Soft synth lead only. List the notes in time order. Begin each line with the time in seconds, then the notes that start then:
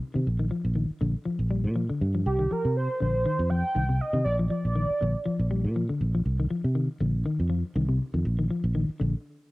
2.26 G4
2.52 A#4
2.77 C5
3.01 C5
3.50 G5
4.01 D#5
4.24 D5
4.49 D5